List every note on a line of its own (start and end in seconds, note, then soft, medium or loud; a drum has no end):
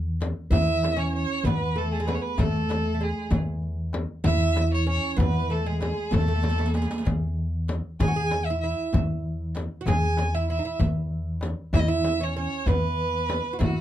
0.00 0.31 E2 medium
0.21 riq soft
0.21 darbuka tek medium
0.21 frame drum medium
0.50 1.24 E2 medium
0.50 0.96 E4 medium
0.50 1.01 E5 loud
0.50 riq medium
0.50 frame drum medium
0.50 darbuka dum medium
0.82 riq soft
0.82 darbuka tek medium
0.82 frame drum medium
0.96 1.46 C#4 medium
0.96 1.15 C#5 medium
0.96 riq soft
0.96 darbuka ka soft
1.15 1.47 C#5 medium
1.44 2.17 E2 medium
1.44 1.75 B3 medium
1.44 1.79 B4 medium
1.44 riq medium
1.44 darbuka dum medium
1.44 frame drum medium
1.76 1.99 A3 medium
1.76 1.93 A4 medium
1.76 darbuka ka soft
1.92 1.96 G#4 medium
1.92 2.03 A4 medium
2.00 2.07 G#3 medium
2.00 2.09 G#4 medium
2.07 2.39 B3 medium
2.07 2.16 B4 medium
2.07 riq soft
2.07 darbuka tek medium
2.07 frame drum medium
2.15 2.23 C#5 medium
2.22 2.42 B4 medium
2.38 3.11 E2 medium
2.38 2.93 A3 medium
2.38 3.05 A4 medium
2.38 riq medium
2.38 darbuka dum medium
2.38 frame drum medium
2.69 riq soft
2.69 darbuka tek medium
2.69 frame drum medium
2.83 riq soft
2.83 darbuka ka soft
2.94 3.00 A3 soft
3.01 3.30 G#3 medium
3.01 3.34 G#4 medium
3.30 4.04 E2 medium
3.30 riq medium
3.30 darbuka dum medium
3.30 frame drum medium
3.63 darbuka ka soft
3.93 darbuka tek medium
3.93 frame drum medium
4.24 4.97 E2 loud
4.24 4.86 E4 medium
4.24 4.69 E5 loud
4.24 riq medium
4.24 frame drum medium
4.24 darbuka dum medium
4.56 darbuka tek medium
4.56 frame drum medium
4.71 4.88 C#5 medium
4.71 riq soft
4.87 5.16 C#4 medium
4.87 5.11 C#5 medium
5.11 5.20 C#5 medium
5.16 5.91 E2 medium
5.16 5.50 B3 medium
5.16 5.53 B4 medium
5.16 riq medium
5.16 darbuka dum medium
5.16 frame drum medium
5.50 5.66 A3 medium
5.50 5.68 A4 medium
5.50 riq soft
5.66 5.81 G#3 medium
5.66 5.80 G#4 medium
5.66 riq soft
5.66 darbuka ka soft
5.80 6.12 G#3 medium
5.80 6.15 G#4 medium
5.80 riq soft
5.80 darbuka tek medium
5.80 frame drum medium
5.97 riq soft
6.11 6.85 E2 medium
6.11 6.19 A3 medium
6.11 6.75 A4 medium
6.11 riq medium
6.11 darbuka dum medium
6.11 frame drum medium
6.20 6.27 A3 soft
6.28 6.34 A3 medium
6.36 6.42 A3 soft
6.42 6.49 A3 medium
6.42 riq medium
6.42 darbuka tek medium
6.42 frame drum medium
6.49 6.58 A3 soft
6.49 riq medium
6.58 6.67 A3 medium
6.58 riq medium
6.58 darbuka ka medium
6.66 riq medium
6.74 7.05 G#3 medium
6.74 7.05 G#4 medium
6.74 riq medium
6.74 darbuka tek medium
6.82 riq medium
6.91 riq medium
6.91 darbuka ka medium
6.98 riq medium
7.05 7.79 E2 medium
7.05 riq medium
7.05 darbuka dum medium
7.05 frame drum medium
7.38 darbuka ka soft
7.68 riq soft
7.68 darbuka tek medium
7.68 frame drum medium
8.00 8.72 E2 medium
8.00 8.07 G#4 medium
8.00 8.47 G#5 loud
8.00 riq medium
8.00 frame drum medium
8.00 darbuka dum medium
8.08 8.14 F#4 medium
8.16 8.49 G#4 medium
8.30 riq soft
8.30 darbuka tek medium
8.30 frame drum medium
8.45 8.60 E5 medium
8.45 riq soft
8.45 darbuka ka soft
8.50 8.62 E4 medium
8.61 8.92 E4 medium
8.61 8.90 E5 medium
8.93 9.66 E2 medium
8.93 riq medium
8.93 darbuka dum medium
8.93 frame drum medium
9.25 darbuka ka soft
9.55 riq soft
9.55 darbuka tek medium
9.55 frame drum medium
9.81 9.87 F#4 medium
9.86 10.59 E2 medium
9.86 10.34 G#4 medium
9.86 10.36 G#5 loud
9.86 riq medium
9.86 darbuka dum medium
9.86 frame drum medium
10.17 riq medium
10.17 darbuka tek medium
10.17 frame drum medium
10.33 10.49 E4 medium
10.33 10.50 E5 medium
10.33 riq soft
10.33 darbuka ka soft
10.50 10.56 E4 medium
10.50 10.79 E5 medium
10.59 10.64 D#4 medium
10.65 10.80 E4 medium
10.79 11.53 E2 medium
10.79 riq medium
10.79 darbuka dum loud
10.79 frame drum medium
11.11 darbuka ka soft
11.41 riq medium
11.41 darbuka tek medium
11.41 frame drum medium
11.73 12.46 E2 medium
11.73 11.87 E4 medium
11.73 11.80 E5 loud
11.73 riq medium
11.73 darbuka dum medium
11.73 frame drum medium
11.79 11.90 D#5 medium
11.88 12.20 E4 medium
11.88 12.25 E5 loud
12.04 riq medium
12.04 darbuka tek medium
12.04 frame drum medium
12.21 12.35 C#4 medium
12.21 12.37 C#5 medium
12.21 darbuka ka soft
12.37 12.68 C#4 medium
12.37 12.70 C#5 medium
12.66 13.39 E2 medium
12.66 13.56 B3 medium
12.66 13.60 B4 medium
12.66 riq medium
12.66 frame drum medium
12.66 darbuka dum medium
12.99 riq soft
12.99 darbuka ka soft
13.13 riq soft
13.29 riq soft
13.29 darbuka tek medium
13.29 frame drum medium
13.44 riq soft
13.44 darbuka ka soft
13.53 13.58 F#4 medium
13.59 13.81 E2 medium
13.59 13.81 E4 medium
13.59 13.81 F#4 medium
13.59 riq medium
13.59 darbuka dum medium
13.59 frame drum medium